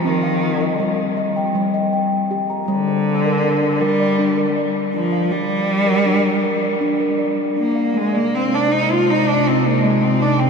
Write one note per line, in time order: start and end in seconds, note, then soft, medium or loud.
0.00 0.42 A#5 soft
0.05 0.90 D#3 medium
0.05 0.42 C4 medium
0.23 0.79 F5 medium
0.61 0.79 D#5 medium
0.80 1.47 G3 medium
0.80 1.16 D#5 medium
1.17 1.55 D#5 medium
1.36 1.92 G5 medium
1.55 2.56 G3 medium
1.74 2.11 D#5 medium
1.93 2.49 G5 medium
2.31 2.68 G4 medium
2.50 2.87 A#5 soft
2.68 3.82 D3 medium
2.68 3.36 G3 medium
2.88 3.44 C5 soft
3.25 3.43 A#4 medium
3.44 4.11 D4 medium
3.44 3.80 A#4 medium
3.81 4.56 G3 medium
3.81 4.19 A#4 medium
4.00 4.55 D5 medium
4.19 4.93 D4 medium
4.37 4.75 A#4 medium
4.57 5.13 D5 medium
4.94 5.33 F3 medium
4.94 5.31 D4 medium
5.12 5.69 F5 soft
5.31 6.81 G3 medium
5.31 5.69 G3 medium
5.87 6.05 A#4 medium
6.06 6.74 D4 medium
6.06 6.42 A#4 medium
6.44 6.81 A#4 medium
6.62 7.17 D5 medium
6.81 7.55 D4 medium
7.00 7.38 A#4 medium
7.18 7.75 D5 soft
7.57 7.99 A#3 medium
7.57 7.94 D4 medium
7.75 8.13 F5 soft
7.94 10.50 C3 medium
7.94 10.50 G#3 medium
7.94 8.32 G#3 medium
7.94 8.16 G#3 medium
7.94 10.50 D#4 medium
8.13 8.36 A#3 medium
8.13 8.69 D5 soft
8.35 8.56 C4 medium
8.50 8.73 D4 medium
8.50 8.68 C5 medium
8.68 9.36 D#4 medium
8.68 8.92 D#4 medium
8.68 9.05 C5 medium
8.90 9.12 F4 medium
9.06 9.30 D#4 medium
9.06 9.44 C5 medium
9.25 9.49 D4 medium
9.25 9.81 D#5 soft
9.43 10.18 D#4 medium
9.47 9.68 C4 medium
9.63 9.85 A#3 medium
9.63 10.00 C5 medium
9.82 10.04 G#3 medium
9.82 10.38 D#5 medium
10.03 10.23 C4 medium
10.20 10.41 D4 medium
10.20 10.50 D#4 medium
10.38 10.50 C4 medium
10.38 10.50 G5 soft